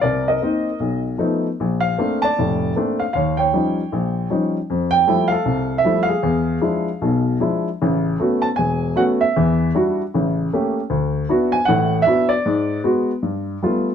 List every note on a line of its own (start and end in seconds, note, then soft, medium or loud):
0.01 0.36 C2 medium
0.01 0.28 A#4 medium
0.01 0.28 D5 medium
0.28 0.78 A#4 soft
0.28 1.02 D#5 medium
0.42 0.68 A#3 soft
0.42 0.69 C4 soft
0.42 0.69 D#4 medium
0.80 1.14 B1 soft
1.18 1.46 F3 soft
1.18 1.46 A3 soft
1.18 1.46 B3 soft
1.18 1.46 D#4 soft
1.60 1.94 A#1 medium
1.80 2.19 F5 medium
1.98 2.25 A3 soft
1.98 2.25 A#3 soft
1.98 2.25 C4 soft
1.98 2.25 D4 soft
2.22 2.98 D5 medium
2.22 2.72 A5 medium
2.39 2.72 F1 medium
2.39 2.72 A2 soft
2.76 3.02 A3 soft
2.76 3.03 A#3 soft
2.76 3.03 C4 soft
2.76 3.03 D4 soft
3.00 3.12 F5 medium
3.13 3.48 D#2 medium
3.13 3.38 C#5 medium
3.13 3.40 F5 medium
3.37 4.51 C#5 medium
3.37 4.50 G5 medium
3.53 3.79 F3 soft
3.53 3.80 G3 soft
3.53 3.80 C#4 soft
3.53 3.80 D#4 soft
3.92 4.25 A#1 medium
4.30 4.56 F3 soft
4.30 4.56 G3 soft
4.30 4.56 C#4 soft
4.30 4.57 D#4 medium
4.70 5.02 F2 medium
4.91 5.28 G5 loud
5.07 5.33 F3 medium
5.07 5.33 G3 soft
5.07 5.33 A3 soft
5.07 5.34 E4 medium
5.28 5.78 F5 medium
5.32 6.05 A4 medium
5.45 5.79 C2 medium
5.78 6.07 E5 medium
5.84 6.10 F3 medium
5.84 6.11 G3 soft
5.84 6.11 A3 soft
5.84 6.11 E4 soft
6.03 7.33 F5 medium
6.09 7.36 G#4 medium
6.23 6.56 E2 medium
6.61 6.88 F3 soft
6.61 6.88 G#3 soft
6.61 6.88 D4 soft
6.61 6.88 E4 soft
7.01 7.35 B1 medium
7.01 7.35 B2 medium
7.40 7.67 F3 soft
7.40 7.67 G#3 soft
7.40 7.67 D4 soft
7.40 7.68 E4 soft
7.81 8.15 A1 medium
7.81 8.15 C#3 medium
8.20 8.46 A3 soft
8.20 8.46 B3 soft
8.20 8.46 C#4 soft
8.20 8.46 F#4 soft
8.42 8.47 A5 medium
8.56 8.92 E1 medium
8.56 8.97 G#5 medium
8.96 9.23 A3 soft
8.96 9.23 B3 soft
8.96 9.23 C#4 soft
8.96 9.23 F#4 medium
8.96 9.02 F#5 medium
9.21 9.70 E5 medium
9.36 9.70 E2 medium
9.36 9.70 E3 medium
9.75 10.01 G3 soft
9.75 10.01 D4 medium
9.75 10.01 E4 soft
9.75 10.02 F#4 medium
10.14 10.47 A1 medium
10.14 10.47 C#3 medium
10.53 10.79 A3 soft
10.53 10.79 A#3 soft
10.53 10.79 C#4 soft
10.53 10.79 G4 medium
10.90 11.24 D2 medium
11.29 11.55 B3 soft
11.29 11.55 D4 soft
11.29 11.55 E4 soft
11.29 11.56 F#4 medium
11.52 11.66 G#5 medium
11.65 12.01 A1 medium
11.65 12.02 A2 medium
11.65 12.02 F#5 medium
12.02 12.30 E5 medium
12.07 12.32 B3 soft
12.07 12.33 D4 soft
12.07 12.33 E4 soft
12.07 12.33 F#4 medium
12.29 12.79 D5 medium
12.46 12.79 G#2 medium
12.84 13.10 G#3 medium
12.84 13.10 B3 soft
12.84 13.10 F#4 medium
13.23 13.56 G2 medium
13.63 13.89 G3 soft
13.63 13.89 A3 soft
13.63 13.89 B3 soft
13.63 13.89 F4 medium